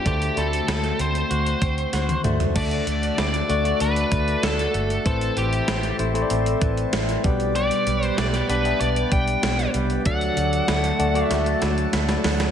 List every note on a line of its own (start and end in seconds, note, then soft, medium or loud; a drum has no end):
0.00 0.37 D4 medium
0.00 0.12 G4 medium
0.05 0.28 D2 loud
0.05 0.95 D3 medium
0.05 0.28 A3 medium
0.05 0.68 A3 medium
0.05 0.29 D4 medium
0.05 0.29 F#4 medium
0.05 0.39 G4 medium
0.05 0.29 C5 medium
0.05 kick loud
0.05 closed hi-hat medium
0.22 closed hi-hat medium
0.36 0.59 D2 medium
0.36 1.29 A3 medium
0.36 0.98 C4 medium
0.36 1.30 D4 medium
0.36 1.30 F#4 medium
0.36 1.01 A4 medium
0.36 1.30 B5 medium
0.36 closed hi-hat medium
0.53 closed hi-hat soft
0.68 0.91 D2 medium
0.68 2.24 A3 medium
0.68 snare loud
0.68 closed hi-hat medium
0.84 closed hi-hat medium
0.99 1.22 D2 medium
0.99 1.61 C4 medium
0.99 2.21 C5 medium
0.99 closed hi-hat medium
1.15 closed hi-hat medium
1.30 1.53 D2 medium
1.30 1.93 F#4 medium
1.30 closed hi-hat medium
1.47 closed hi-hat medium
1.62 1.84 D2 medium
1.62 2.62 C4 medium
1.62 kick medium
1.62 closed hi-hat medium
1.78 closed hi-hat soft
1.93 2.16 D2 medium
1.93 3.21 F#4 medium
1.93 snare medium
1.93 closed hi-hat medium
2.09 closed hi-hat medium
2.09 high tom medium
2.24 2.47 D2 medium
2.24 2.47 A3 medium
2.24 2.55 A3 medium
2.24 2.48 D4 medium
2.24 2.48 F#4 medium
2.24 2.48 C5 medium
2.24 closed hi-hat medium
2.24 mid tom medium
2.40 closed hi-hat soft
2.40 floor tom medium
2.55 2.78 D2 loud
2.55 3.45 D3 medium
2.55 3.25 A3 medium
2.55 2.87 A3 medium
2.55 3.25 D4 medium
2.55 3.25 F#4 medium
2.55 5.03 F#4 medium
2.55 7.21 A4 medium
2.55 5.03 D5 medium
2.55 3.26 D5 medium
2.55 3.18 D5 loud
2.55 7.21 A5 medium
2.55 kick loud
2.55 closed hi-hat medium
2.55 crash medium
2.71 closed hi-hat soft
2.87 3.09 D2 medium
2.87 4.12 A3 medium
2.87 closed hi-hat medium
3.03 closed hi-hat medium
3.18 3.41 D2 medium
3.18 3.34 C4 medium
3.18 3.81 D5 medium
3.18 snare loud
3.18 closed hi-hat medium
3.34 3.80 D4 medium
3.34 closed hi-hat medium
3.49 3.72 D2 loud
3.49 3.61 A3 medium
3.49 3.61 D4 medium
3.49 3.61 F#4 medium
3.49 5.12 F#4 medium
3.49 3.61 D5 medium
3.49 closed hi-hat medium
3.64 4.57 A3 medium
3.64 4.58 D4 medium
3.64 4.58 F#4 medium
3.64 4.58 D5 medium
3.64 closed hi-hat medium
3.80 4.03 D2 loud
3.80 4.42 D4 medium
3.80 4.45 B4 medium
3.80 closed hi-hat medium
3.96 closed hi-hat medium
4.12 4.34 D2 medium
4.12 4.74 A3 medium
4.12 kick medium
4.12 closed hi-hat medium
4.28 closed hi-hat soft
4.43 4.65 D2 medium
4.43 5.12 D4 medium
4.43 5.05 A4 medium
4.43 snare loud
4.43 closed hi-hat medium
4.59 closed hi-hat medium
4.74 4.97 G1 medium
4.74 5.68 A3 medium
4.74 closed hi-hat medium
4.90 closed hi-hat soft
5.05 5.28 A1 loud
5.05 5.95 A2 medium
5.05 5.36 E3 medium
5.05 5.75 A3 medium
5.05 5.75 C4 medium
5.05 7.22 E4 medium
5.05 5.75 E4 medium
5.05 5.38 A4 medium
5.05 7.22 C5 medium
5.05 5.75 C5 medium
5.05 kick loud
5.05 closed hi-hat medium
5.21 closed hi-hat medium
5.37 5.59 A1 medium
5.37 6.61 E3 medium
5.37 5.96 G4 medium
5.37 closed hi-hat medium
5.53 closed hi-hat soft
5.68 5.91 A1 medium
5.68 6.29 C4 medium
5.68 snare loud
5.68 closed hi-hat medium
5.83 closed hi-hat medium
5.99 6.22 A1 medium
5.99 6.11 A3 medium
5.99 6.11 C4 medium
5.99 6.11 E4 medium
5.99 7.31 E4 medium
5.99 6.11 C5 medium
5.99 closed hi-hat medium
6.14 7.07 A3 medium
6.14 7.08 C4 medium
6.14 7.08 E4 medium
6.14 6.22 C5 medium
6.14 closed hi-hat medium
6.22 7.11 D5 loud
6.30 6.53 A1 loud
6.30 6.92 C4 medium
6.30 closed hi-hat loud
6.46 closed hi-hat medium
6.61 6.84 A1 medium
6.61 7.24 E3 medium
6.61 kick loud
6.61 closed hi-hat medium
6.77 closed hi-hat soft
6.93 7.16 A1 medium
6.93 7.31 C4 medium
6.93 snare loud
6.93 closed hi-hat medium
7.09 closed hi-hat medium
7.24 7.69 B1 medium
7.24 8.14 B2 medium
7.24 7.55 G3 medium
7.24 8.24 B3 medium
7.24 8.24 D4 medium
7.24 8.25 G4 medium
7.24 10.03 G4 medium
7.24 10.03 B4 medium
7.24 12.51 D5 medium
7.24 8.25 D5 loud
7.24 10.03 B5 medium
7.24 kick loud
7.24 closed hi-hat medium
7.40 closed hi-hat soft
7.55 7.86 G3 medium
7.55 8.05 D5 medium
7.55 closed hi-hat medium
7.71 closed hi-hat medium
7.87 8.09 B1 medium
7.87 9.11 G3 medium
7.87 closed hi-hat medium
8.03 8.17 C5 medium
8.03 closed hi-hat soft
8.18 8.41 B1 medium
8.18 8.34 A3 medium
8.18 8.47 D5 medium
8.18 snare loud
8.18 closed hi-hat medium
8.34 8.80 B3 medium
8.34 closed hi-hat medium
8.49 8.72 B1 medium
8.49 8.61 B3 medium
8.49 8.61 D4 medium
8.49 10.99 D4 medium
8.49 8.61 G4 medium
8.49 8.80 B4 medium
8.49 8.61 D5 medium
8.49 closed hi-hat medium
8.65 9.58 B3 medium
8.65 9.58 D4 medium
8.65 9.58 G4 medium
8.65 9.58 E5 medium
8.65 closed hi-hat medium
8.80 9.03 B1 loud
8.80 9.42 B3 medium
8.80 9.10 D5 medium
8.80 closed hi-hat medium
8.96 closed hi-hat medium
9.12 9.34 B1 loud
9.12 9.73 G3 medium
9.12 9.71 G5 loud
9.12 kick loud
9.12 closed hi-hat medium
9.28 closed hi-hat medium
9.43 9.66 B1 medium
9.43 10.12 B3 medium
9.43 snare loud
9.43 closed hi-hat loud
9.59 closed hi-hat medium
9.74 9.97 C2 medium
9.74 10.06 G3 medium
9.74 closed hi-hat medium
9.90 closed hi-hat soft
10.05 10.28 D2 loud
10.05 10.95 D3 medium
10.05 10.36 F#3 medium
10.05 10.75 A3 medium
10.05 10.75 D4 medium
10.05 12.51 F#4 medium
10.05 10.75 F#4 medium
10.05 12.51 A4 medium
10.05 10.76 D5 medium
10.05 11.26 F#5 loud
10.05 kick loud
10.05 closed hi-hat medium
10.21 closed hi-hat medium
10.37 10.59 D2 medium
10.37 11.61 F#3 medium
10.37 closed hi-hat medium
10.53 closed hi-hat medium
10.68 10.91 D2 loud
10.68 11.30 A3 medium
10.68 snare loud
10.68 closed hi-hat medium
10.84 closed hi-hat medium
10.99 11.22 D2 loud
10.99 11.11 A3 medium
10.99 11.11 D4 medium
10.99 12.51 D4 medium
10.99 11.11 F#4 medium
10.99 11.11 D5 medium
10.99 closed hi-hat medium
11.14 12.08 A3 medium
11.14 12.08 D4 medium
11.14 12.08 F#4 medium
11.14 12.08 D5 loud
11.14 closed hi-hat medium
11.26 11.89 E5 loud
11.31 11.53 D2 loud
11.31 11.93 A3 medium
11.31 snare medium
11.31 closed hi-hat medium
11.46 closed hi-hat medium
11.62 11.84 D2 loud
11.62 12.24 F#3 medium
11.62 snare medium
11.62 closed hi-hat medium
11.78 closed hi-hat soft
11.93 12.16 D2 medium
11.93 12.51 A3 medium
11.93 snare medium
11.93 closed hi-hat medium
12.09 snare medium
12.09 closed hi-hat medium
12.24 12.47 D2 medium
12.24 12.51 F#3 medium
12.24 snare medium
12.24 open hi-hat medium
12.40 snare medium
12.40 closed hi-hat soft